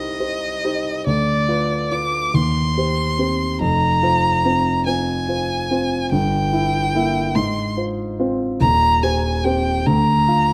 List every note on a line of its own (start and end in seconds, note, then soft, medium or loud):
0.00 1.09 C2 medium
0.00 0.64 D#4 medium
0.00 0.20 G4 medium
0.00 0.20 C5 medium
0.00 1.06 D#5 medium
0.20 0.60 G4 soft
0.20 0.60 C5 medium
0.64 1.03 D#4 medium
0.64 1.03 G4 medium
0.64 1.03 C5 medium
1.06 1.48 D2 medium
1.06 1.93 D5 loud
1.48 1.87 F4 medium
1.48 1.87 B4 medium
1.91 2.30 F4 medium
1.91 2.30 B4 medium
1.91 2.36 D6 medium
2.34 2.75 D#2 medium
2.34 3.60 C6 medium
2.78 3.15 G4 soft
2.78 3.15 C5 medium
3.18 3.56 C4 soft
3.18 3.56 G4 medium
3.18 3.56 C5 medium
3.60 4.00 F1 medium
3.60 4.01 F2 medium
3.60 4.84 A#5 loud
4.03 4.40 F4 medium
4.03 4.41 C5 medium
4.45 4.82 C4 medium
4.45 4.83 F4 soft
4.45 4.83 C5 medium
4.86 5.24 C4 medium
4.86 5.24 F4 medium
4.86 5.25 C5 medium
4.86 6.09 G#5 medium
5.29 5.66 F4 soft
5.29 5.67 C5 medium
5.71 6.08 C4 soft
5.71 6.08 F4 soft
5.71 6.08 C5 medium
6.12 6.51 G1 medium
6.12 6.52 G2 medium
6.12 7.37 G5 loud
6.53 6.90 E4 medium
6.53 6.90 E5 medium
6.95 7.32 A#3 medium
6.95 7.32 E4 medium
6.95 7.32 E5 medium
7.35 7.75 G#2 medium
7.35 7.76 C6 medium
7.77 8.14 F4 soft
7.77 8.14 C5 medium
8.20 8.57 C4 medium
8.20 8.57 F4 medium
8.20 8.57 C5 medium
8.60 9.01 D#1 medium
8.60 9.01 D#2 medium
8.60 9.04 A#5 loud
9.03 9.40 G4 medium
9.03 9.40 C5 medium
9.03 9.46 G#5 medium
9.44 9.82 C4 medium
9.44 9.82 G4 medium
9.44 9.82 C5 medium
9.44 9.87 G5 medium
9.86 10.27 D2 medium
9.86 10.53 A#5 loud
10.28 10.53 F4 soft
10.28 10.53 F5 medium